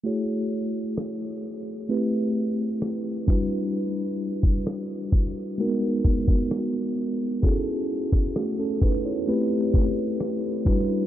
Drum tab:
SD |----r-------r---|----r-------r---|----r-------r---|
BD |--------------o-|---o--o---oo----|o--o--o---o---o-|